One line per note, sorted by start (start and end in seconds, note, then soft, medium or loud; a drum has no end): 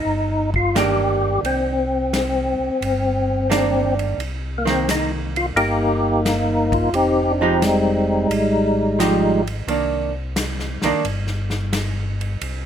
0.00 0.50 D#4 medium
0.05 1.39 G1 medium
0.54 0.77 F4 medium
0.54 kick soft
0.75 1.82 D#3 medium
0.75 1.82 A#3 medium
0.75 1.82 D4 medium
0.75 1.41 G4 medium
0.75 snare medium
0.75 hi-hat pedal medium
0.75 ride medium
1.43 2.56 C2 medium
1.43 3.94 C4 medium
1.43 ride soft
2.13 snare medium
2.13 hi-hat pedal soft
2.13 ride medium
2.59 2.70 C2 soft
2.81 4.14 G1 medium
2.81 ride medium
3.50 4.19 D#3 medium
3.50 4.19 A#3 medium
3.50 4.19 D4 medium
3.50 snare medium
3.50 hi-hat pedal soft
3.50 ride medium
3.99 ride soft
4.18 5.52 C2 medium
4.18 ride soft
4.58 4.67 A#3 medium
4.65 5.52 D#3 medium
4.65 5.52 A#3 medium
4.65 snare medium
4.65 ride soft
4.69 4.90 C4 medium
4.89 5.12 D#4 medium
4.89 snare medium
4.89 hi-hat pedal medium
4.89 ride medium
5.36 5.46 F4 medium
5.36 ride soft
5.55 6.89 G1 medium
5.55 6.90 A#3 medium
5.55 6.90 D#4 medium
5.55 6.21 G4 medium
5.55 ride medium
6.25 snare medium
6.25 hi-hat pedal medium
6.25 ride medium
6.72 6.95 F4 medium
6.72 kick medium
6.72 ride soft
6.93 8.26 F1 medium
6.93 8.27 C4 medium
6.93 7.38 D#4 medium
6.93 7.32 G4 loud
6.93 ride medium
7.31 7.41 D4 medium
7.39 7.60 F3 medium
7.39 7.60 G#3 medium
7.39 7.60 D#4 medium
7.39 7.61 G4 medium
7.61 9.42 G3 medium
7.61 9.42 G#3 medium
7.61 9.42 D#4 medium
7.61 snare medium
7.61 hi-hat pedal medium
7.61 ride medium
8.29 9.63 G#1 medium
8.29 ride medium
8.99 9.41 F3 medium
8.99 9.42 D#4 medium
8.99 9.42 G4 medium
8.99 snare medium
8.99 hi-hat pedal medium
8.99 ride medium
9.47 ride soft
9.67 10.79 C2 medium
9.67 10.10 D#3 soft
9.67 10.11 A#3 medium
9.67 10.11 D4 medium
9.67 ride soft
10.36 snare medium
10.36 hi-hat pedal medium
10.36 ride medium
10.60 snare soft
10.82 10.93 C2 soft
10.82 11.02 D#3 medium
10.82 11.03 A#3 medium
10.82 11.03 D4 medium
10.82 snare soft
10.82 ride soft
11.04 12.37 G1 medium
11.04 ride medium
11.27 snare soft
11.50 snare soft
11.73 snare medium
11.73 hi-hat pedal medium
11.73 ride medium
12.21 ride soft
12.41 12.66 C2 medium
12.41 ride medium